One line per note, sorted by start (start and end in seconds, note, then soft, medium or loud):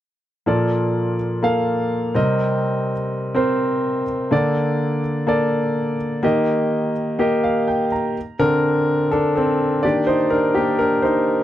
0.46 2.11 A#2 soft
0.46 2.11 F3 medium
0.46 1.15 A#3 medium
0.46 1.15 A4 medium
0.46 1.15 D5 medium
1.43 2.11 A#3 medium
1.43 2.11 A4 medium
1.43 2.11 F5 medium
2.15 4.03 C3 soft
2.15 4.03 G3 medium
2.15 2.92 C4 medium
2.15 2.92 A#4 medium
2.15 2.92 D#5 medium
3.35 4.03 C4 medium
3.35 4.03 A#4 medium
3.35 4.04 C5 medium
4.31 6.20 D3 medium
4.31 4.99 A#3 medium
4.31 4.99 A4 medium
4.31 5.00 D5 medium
5.27 5.95 A#3 medium
5.27 5.95 A4 medium
5.27 5.96 D5 medium
6.23 8.12 D#3 medium
6.23 6.91 A#3 medium
6.23 6.91 G4 medium
6.23 6.92 D#5 medium
7.19 7.87 A#3 medium
7.19 7.87 G4 medium
7.19 7.88 D#5 medium
7.44 7.66 F5 medium
7.68 7.90 G5 medium
7.92 8.37 A#5 soft
8.39 9.08 D3 soft
8.39 9.08 C4 soft
8.39 9.08 D4 medium
8.39 9.08 A4 soft
8.39 9.08 A#4 medium
9.11 9.35 D4 medium
9.11 9.34 A4 medium
9.36 9.81 C4 medium
9.36 9.85 A4 medium
9.83 10.15 D#3 soft
9.83 10.16 A#3 soft
9.83 10.16 D4 soft
9.83 10.07 G4 medium
9.83 10.08 D5 medium
10.07 10.31 D#4 medium
10.07 10.32 C5 medium
10.30 10.54 D4 medium
10.30 10.56 A#4 medium
10.55 10.79 A#3 medium
10.55 10.77 G4 medium
10.79 11.03 D4 soft
10.79 11.02 A#4 medium
11.02 11.44 D#4 medium
11.02 11.44 C5 medium